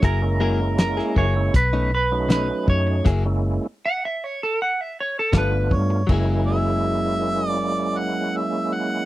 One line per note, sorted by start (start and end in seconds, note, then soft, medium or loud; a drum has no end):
0.02 0.99 F#1 loud
0.02 0.22 F#3 medium
0.02 0.22 A#3 medium
0.02 0.22 E4 medium
0.02 0.21 G#4 medium
0.02 0.40 A#4 medium
0.02 kick loud
0.02 closed hi-hat medium
0.22 1.26 G#3 medium
0.22 1.26 A#3 medium
0.22 1.26 C#4 medium
0.22 1.26 E4 medium
0.22 muted clean electric guitar stroke soft
0.40 0.60 F#3 medium
0.40 0.60 A#3 medium
0.40 0.60 E4 medium
0.40 0.59 G#4 medium
0.40 0.78 A#4 medium
0.60 muted clean electric guitar stroke soft
0.78 1.17 A#4 medium
0.78 snare loud
0.78 closed hi-hat medium
0.97 1.15 A#3 soft
0.97 1.16 E4 soft
0.97 1.16 G#4 medium
0.97 snare soft
1.15 1.49 F#1 medium
1.15 1.36 F#3 medium
1.15 1.36 A#3 medium
1.15 1.35 E4 medium
1.15 1.34 G#4 medium
1.15 1.56 C#5 medium
1.15 kick medium
1.36 1.54 G#3 medium
1.36 1.54 A#3 medium
1.36 1.54 C#4 medium
1.36 1.54 E4 medium
1.36 muted clean electric guitar stroke soft
1.54 2.51 B1 medium
1.54 1.91 B4 medium
1.54 muted clean electric guitar stroke soft
1.54 kick loud
1.54 closed hi-hat medium
1.73 1.90 B2 medium
1.73 1.91 A3 medium
1.73 1.91 C#4 medium
1.73 1.91 D#4 medium
1.91 2.31 B4 medium
1.91 muted clean electric guitar stroke soft
2.12 3.06 F#3 medium
2.12 3.06 A3 medium
2.12 3.06 C#4 medium
2.12 3.06 D#4 medium
2.29 2.49 B2 medium
2.29 2.49 A3 medium
2.29 2.48 C#4 medium
2.29 2.48 D#4 medium
2.29 2.66 B4 medium
2.29 snare loud
2.29 closed hi-hat medium
2.49 muted clean electric guitar stroke soft
2.67 3.00 F#2 medium
2.67 3.08 C#5 medium
2.67 muted clean electric guitar stroke soft
2.67 kick medium
2.87 muted clean electric guitar stroke soft
3.05 3.58 F#1 medium
3.05 3.25 F#3 medium
3.05 3.25 A#3 medium
3.05 3.24 E4 medium
3.05 3.23 G#4 medium
3.05 kick loud
3.05 closed hi-hat medium
3.05 crash medium
3.25 3.67 G#3 medium
3.25 3.67 A#3 medium
3.25 3.67 C#4 medium
3.25 3.67 E4 medium
3.25 muted clean electric guitar stroke soft
3.86 4.02 F#5 loud
4.05 4.24 E5 medium
4.24 4.41 C#5 medium
4.43 4.59 A4 medium
4.62 4.81 F#5 medium
4.81 4.97 E5 medium
5.00 5.17 C#5 medium
5.19 5.35 A4 medium
5.33 5.73 G1 loud
5.33 5.52 G3 medium
5.33 6.03 A3 medium
5.33 6.03 B3 medium
5.33 5.52 B3 medium
5.33 6.03 D4 medium
5.33 6.03 F4 medium
5.33 5.52 F4 medium
5.33 5.51 A4 medium
5.33 kick medium
5.33 snare loud
5.33 closed hi-hat medium
5.38 5.72 B4 loud
5.52 muted clean electric guitar stroke soft
5.71 6.03 G2 medium
5.71 6.08 C#5 medium
5.71 muted clean electric guitar stroke soft
5.71 kick medium
5.90 muted clean electric guitar stroke soft
6.07 9.05 F#1 medium
6.07 9.05 F#3 medium
6.07 9.05 G#3 medium
6.07 9.05 A#3 medium
6.07 9.05 C#4 medium
6.07 9.05 E4 medium
6.07 kick loud
6.07 crash medium
6.12 9.05 E4 medium
6.12 9.05 G#4 medium
6.47 7.50 E5 loud
7.50 8.00 D5 loud
7.98 8.38 F#5 medium
8.37 8.76 E5 medium
8.74 9.05 F#5 medium